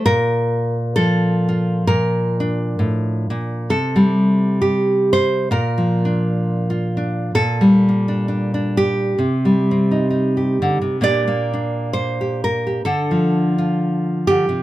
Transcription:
0.06 A#2 A#4
0.96 F3 A4
1.49 F4
1.87 A#2 A#4
2.40 D4
2.79 A2
3.30 A#2
3.70 C3 A4
3.96 G3
4.62 G4
5.13 C5
5.51 A#2 A#4
5.78 F3
6.05 D4
6.70 F4
6.97 D4
7.35 A#2 A4
7.61 G3
7.89 A#3
8.08 D4
8.28 D4
8.54 D4
8.77 G4
9.19 C3
9.45 G3
9.71 C4
9.91 D#4
10.10 D#4
10.37 G4
10.62 D3
10.82 C3
11.01 A#2 A#3 D4 G4 D5
11.28 A#3
11.54 D4
11.93 C5
12.21 G4
12.44 A#4
12.67 G4
12.85 D3 A4
13.11 F3
13.58 F4
14.27 D3 G4
14.49 C3

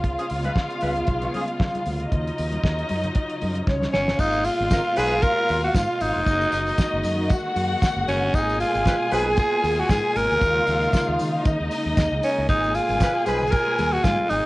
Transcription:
Already playing: C#2 C#3 G#3 B3 F4 F5
0.04 kick, closed hi-hat, low conga
0.19 F3 C#4 G#4, closed hi-hat, muted conga
0.30 C#2, open hi-hat
0.44 G#3 F4 B4, closed hi-hat, high conga
0.56 kick, snare, muted conga
0.70 closed hi-hat
0.81 C#2 G#3 F4 B4, open hi-hat, high conga
0.96 closed hi-hat, low conga
1.07 B1, kick, closed hi-hat, muted conga
1.22 G#3 F4 C#5, closed hi-hat
1.34 F3 C#4 G#4, open hi-hat, high conga
1.48 closed hi-hat
1.60 kick, snare, muted conga, high conga
1.75 closed hi-hat, muted conga, high conga
1.86 D2, open hi-hat
2.00 closed hi-hat
2.11 D#2 F#3 D#4 D#5, kick, closed hi-hat, muted conga, low conga
2.27 closed hi-hat
2.38 D#2, open hi-hat
2.52 closed hi-hat, high conga
2.63 D#2, kick, snare, muted conga
2.79 closed hi-hat
2.89 F#2, open hi-hat, high conga
3.04 closed hi-hat, low conga
3.15 kick, closed hi-hat, muted conga
3.30 closed hi-hat
3.41 F#2, open hi-hat, high conga
3.55 closed hi-hat
3.67 C#2 C#4 C#5, kick, snare, muted conga, high conga
3.82 snare, high conga
3.93 G1 C#4, snare
4.08 snare
4.19 G#1 B2 G#3 A#3 D#4 F4 F5, kick, crash, tambourine
4.33 tambourine
4.44 F4, open hi-hat, tambourine
4.60 G#1
4.70 F3 D#4 A#4, kick, snare, closed hi-hat, tambourine
4.96 B1 F3 D#4 G#4 B4, open hi-hat, tambourine
5.22 A#4, kick, closed hi-hat, tambourine
5.49 D#2, open hi-hat, tambourine
5.63 F#4
5.75 G#2 F4, kick, snare, closed hi-hat, tambourine
6.00 G#1 D#4, open hi-hat, tambourine
6.16 F1
6.26 F#1 D#3 D#4 F#4 D#5, kick, closed hi-hat, tambourine
6.41 tambourine
6.52 F#1, open hi-hat, tambourine
6.67 tambourine
6.78 kick, snare, closed hi-hat, tambourine
6.93 F#1
7.04 F#2, open hi-hat, tambourine
7.30 F#4 F#5, kick, closed hi-hat, tambourine
7.56 F#2, open hi-hat, tambourine
7.82 kick, snare, closed hi-hat, tambourine
7.96 F#1
8.08 F#1 C#4, open hi-hat, tambourine
8.22 G1
8.34 G#1 B2 D#4 F4 G#4 G#5, kick, closed hi-hat, tambourine
8.49 tambourine
8.60 F4, open hi-hat, tambourine
8.75 G#1, tambourine
8.85 F3 D#4 B4, kick, snare, closed hi-hat, tambourine
9.11 B1 F3 D#4 G#4 B4, open hi-hat, tambourine
9.37 G#4, kick, closed hi-hat, tambourine
9.64 D#2, open hi-hat, tambourine
9.79 F#4
9.90 G#2 G#4, kick, snare, closed hi-hat, tambourine
10.16 G#1 A#4, open hi-hat, tambourine
10.31 D2, tambourine
10.41 D#2 C#3 D#4 F4 F5, kick, closed hi-hat, tambourine
10.67 D#2, open hi-hat, tambourine
10.82 tambourine
10.93 kick, snare, closed hi-hat, tambourine
11.09 D#2
11.19 D#3, open hi-hat, tambourine
11.45 D#3 D#4 D#5, kick, closed hi-hat, tambourine
11.60 D#2
11.71 open hi-hat, tambourine
11.86 D#2
11.97 D#2, kick, snare, closed hi-hat, tambourine
12.12 C#2
12.23 C#4, open hi-hat, tambourine
12.38 C#2
12.49 G#1 B2 D#4 F4 G#4 G#5, kick, closed hi-hat, tambourine, muted conga, low conga
12.64 tambourine
12.75 F4, open hi-hat, tambourine
12.89 G#1, tambourine, high conga
13.00 F3 D#4 B4, kick, snare, closed hi-hat, tambourine
13.15 muted conga
13.25 B1 F3 D#4 G#4 B4, open hi-hat, tambourine, high conga
13.41 tambourine, low conga
13.51 A#4, kick, closed hi-hat, tambourine, muted conga
13.67 muted conga
13.78 D#2, open hi-hat, tambourine, high conga
13.92 F#4
14.04 G#2 F4, kick, snare, closed hi-hat, tambourine, high conga
14.20 high conga
14.30 G#1 D#4, open hi-hat, tambourine

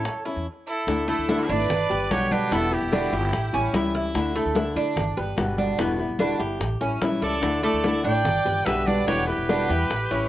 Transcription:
Already playing: A4 C#5
0.05 muted nylon-string guitar stroke, high bongo, high conga
0.25 B3 C#4 E4, high bongo, high conga
0.36 E2
0.68 E4 A4
0.87 D2 D3 A3 D4 E4, high bongo, high conga
1.08 A3 D4 E4 A4, high conga
1.18 D2
1.29 D3 A3 D4 E4, high bongo, high conga
1.49 G#1 A3 D4 E4 B4 D5, high conga
1.70 G1, muted nylon-string guitar stroke, high bongo, high conga, low conga
1.90 G1 G3 B3 G4 B4, high conga
2.11 B1 B2 D3 G3 B3 G4 C#5, high bongo, low bongo, high conga
2.31 D4 G4 B4, high conga
2.51 E1 B2 D3 G3 B3 E4 A4, high bongo, high conga
2.71 G3 B3 E4 G4, high bongo, high conga
2.82 E1
2.92 B2 D3 G3 B3 D4 E4, high bongo, high conga
3.12 G1 G3 B3 E4 G4, high conga
3.32 A1, muted nylon-string guitar stroke, high bongo, high conga
3.53 A1 G3 C#4 E4, high bongo, high conga
3.73 C#2 E3 G3 C#4 E4, high bongo, low bongo, high conga
3.95 E4, high bongo
4.14 D2 D3 A3 D4 E4, high bongo, high conga
4.35 A3 D4 E4, high conga
4.45 D2
4.55 D3 A3 D4 E4, high bongo, high conga
4.76 D3 A3 D4 E4, high conga
4.96 G1, muted nylon-string guitar stroke, high bongo, high conga, low conga
5.17 G1 G3 B3 G4 B4, high conga
5.37 G1 B2 D3 G3 B3 G4, high bongo, low bongo, high conga
5.58 D4, high conga
5.78 E1 B2 D3 G3 B3 E4, high bongo
5.99 G3 B3 E4, high bongo, high conga
6.09 E1
6.19 B2 D3 G3 B3 D4 E4, high bongo, high conga
6.39 G1 G3 B3 E4 G4, high conga
6.60 A1, muted nylon-string guitar stroke, high bongo, high conga
6.81 A1 G3 C#4 E4, high bongo, high conga
7.01 B1 E3 G3 C#4 E4, high bongo, low bongo, high conga
7.22 C#2 E4 A4 D5, high bongo
7.41 D2 D3 A3 D4 E4, high bongo, high conga
7.63 A3 D4 E4 A4 D5, high conga
7.73 D2
7.83 D3 A3 D4 E4, high bongo, high conga
8.04 A1 A3 D4 E4 D5 G5, high conga
8.25 G1, muted nylon-string guitar stroke, high bongo, high conga, low conga
8.45 G1 G3 B3 G4 B4, high conga, low conga
8.66 B1 B2 D3 G3 B3 G4 B4 E5, high bongo, low bongo, high conga
8.87 D4 B4 D5, high conga
9.07 E1 B2 D3 G3 B3 E4 G4 C#5, high bongo, high conga
9.27 G3 B3 E4 G4 B4, high bongo, high conga
9.38 E1
9.49 B2 D3 G3 B3 D4 E4, high bongo, high conga
9.70 E2 G3 B3 E4 G4, high conga
9.90 A1, muted nylon-string guitar stroke, high bongo, high conga
10.11 A1 G3 C#4 E4, high bongo, high conga

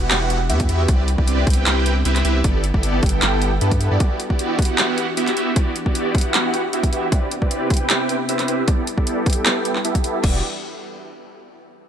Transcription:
Already playing: E3 D4 F#4 G4
0.10 E1 B3 E4 F#4 G4 F#5, clap, closed hi-hat
0.30 closed hi-hat
0.49 E2 B3 E4 F#4 G4 E5, closed hi-hat
0.60 kick, closed hi-hat
0.69 E2 B3 E4 F#4 G4 E5, closed hi-hat
0.88 C2 C3 B3 C4 E4 G4 B4 D5, kick, closed hi-hat
1.08 closed hi-hat
1.18 C2 C4 E4 G4 B4 D5, kick
1.28 closed hi-hat
1.47 C2 C4 E4 G4 B4 G5, kick, closed hi-hat
1.50 closed hi-hat
1.53 closed hi-hat
1.66 C2 C4 E4 G4 B4 G5, clap, closed hi-hat
1.86 closed hi-hat
2.05 C2 C4 E4 G4 B4 E5, closed hi-hat
2.16 clap, closed hi-hat
2.25 C2 C4 E4 G4 B4 E5, closed hi-hat
2.44 G1 G3 B3 E4 G4 A4 B4 D5, kick, closed hi-hat
2.64 closed hi-hat
2.74 G1 B3 E4 G4 A4 D5, kick
2.83 closed hi-hat
3.03 G1 B3 E4 G4 A4 G5, kick, closed hi-hat
3.06 closed hi-hat
3.09 closed hi-hat
3.22 G1 B3 E4 G4 A4 G5, clap, closed hi-hat
3.42 closed hi-hat
3.61 G2 B3 E4 G4 A4 B4, closed hi-hat
3.72 kick, closed hi-hat
3.81 closed hi-hat
3.91 G2 B3 E4 G4 A4 D5
4.00 E3 B3 D4 E4 F#4 G4 D5, kick, closed hi-hat
4.20 closed hi-hat
4.30 B3 E4 F#4 G4 D5, kick
4.39 closed hi-hat
4.59 B3 E4 F#4 G4 F#5, kick, closed hi-hat
4.62 closed hi-hat
4.65 closed hi-hat
4.78 B3 E4 F#4 G4 F#5, clap, closed hi-hat
4.98 closed hi-hat
5.17 B3 E4 F#4 G4 E5, closed hi-hat
5.28 clap, closed hi-hat
5.37 B3 E4 F#4 G4 E5, closed hi-hat
5.56 B3 E4 F#4 G4 D5, kick, closed hi-hat
5.76 closed hi-hat
5.86 B3 E4 F#4 G4 D5, kick
5.95 closed hi-hat
6.15 B3 E4 F#4 G4 F#5, kick, closed hi-hat
6.18 closed hi-hat
6.21 closed hi-hat
6.34 B3 E4 F#4 G4 F#5, clap, closed hi-hat
6.54 closed hi-hat
6.73 B3 E4 F#4 G4 E5, closed hi-hat
6.83 kick, closed hi-hat
6.92 B3 E4 F#4 G4 E5, closed hi-hat
7.12 C3 B3 C4 E4 G4 B4 D5, kick, closed hi-hat
7.31 closed hi-hat
7.42 C4 E4 G4 B4 D5, kick
7.51 closed hi-hat
7.70 C4 E4 G4 B4 G5, kick, closed hi-hat
7.74 closed hi-hat
7.77 closed hi-hat
7.90 C4 E4 G4 B4 G5, clap, closed hi-hat
8.09 closed hi-hat
8.29 C4 E4 G4 B4 E5, closed hi-hat
8.39 clap, closed hi-hat
8.48 C4 E4 G4 B4 E5, closed hi-hat
8.68 G3 B3 E4 G4 A4 B4 D5, kick, closed hi-hat
8.87 closed hi-hat
8.98 B3 E4 G4 A4 D5, kick
9.07 closed hi-hat
9.26 B3 E4 G4 A4 G5, kick, closed hi-hat
9.30 closed hi-hat
9.33 closed hi-hat
9.46 B3 E4 G4 A4 G5, clap, closed hi-hat
9.65 closed hi-hat
9.76 clap
9.85 B3 E4 G4 A4 E5, closed hi-hat
9.95 kick, closed hi-hat
10.04 B3 E4 G4 A4 E5, closed hi-hat
10.24 E1 B3 E4 F#4 G4 D5, kick, crash

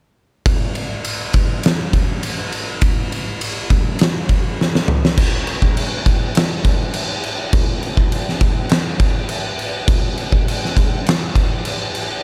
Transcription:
0.46 kick, ride
0.75 ride
1.05 ride
1.33 kick, ride
1.63 snare, ride
1.93 kick, ride
2.23 ride
2.52 ride
2.82 kick, ride
3.12 ride
3.41 ride
3.70 kick, ride
3.99 snare, ride
4.29 kick, ride
4.61 snare
4.75 snare
4.88 mid tom
5.05 snare
5.17 kick, crash
5.47 crash
5.62 kick
5.77 crash
6.06 kick, crash
6.35 snare, crash
6.64 kick, crash
6.94 crash
7.23 crash
7.53 kick, crash
7.83 crash
7.97 kick
8.12 crash
8.29 snare
8.41 kick, crash
8.69 snare, crash
9.00 kick, crash
9.29 crash
9.59 crash
9.88 kick, crash
10.17 crash
10.32 kick
10.48 crash
10.65 snare
10.77 kick, crash
11.06 snare, crash
11.35 kick, crash
11.65 crash
11.95 crash

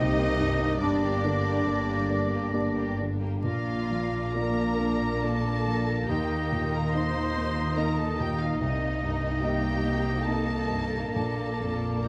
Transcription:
Already playing: C2 G2 C3 A#3 D#4 G4 D#5 A#6
0.00 C4 D#4 D#5
0.19 A#3 C4
0.40 G2 C4 D#4
0.61 A#3 C4
0.80 G1 G2 A#3 D4 G4 D5 A#6
1.04 A#3 G4
1.24 D3 D4
1.47 A#3 G4
1.66 G1 G2 A#3 D4 G4 D5
1.88 A#3 G4
2.10 A#3 D4
2.31 A#3 G4
2.52 G1 G2 A#3 D4 G4 D5
2.76 A#3 G4
2.99 D3 D4
3.20 A#3 G4
3.42 A#1 A#2 A#3 D4 F4 D5 F5 A#6
3.90 F3
4.35 A#3 F4 A#4 D5 A#5
4.80 A#3
5.22 A#3 F4 A4 D5 A5
5.66 F3
6.07 D#2 D#3 D#4 G4 D#5 G5
6.52 A#2
6.73 A#4 A#5
6.93 A#3 D#4 C5 D#5 C6
7.37 A#3
7.77 A#3 D#4 A#4 D#5 A#5
7.98 A4 A5
8.19 A#2 G4 G5
8.39 F4 F5
8.59 C2 C3 A#3 D#4 D#5 A#6
9.03 G2
9.41 A#3 D#4 G4 D#5 G5
9.85 A#3
10.23 A#3 A4 A5
10.27 D#4 D#5
10.70 G2
11.14 A#1 A#2 D4 F4 A4 D5 A5
11.60 F2
12.04 A#3 A#5

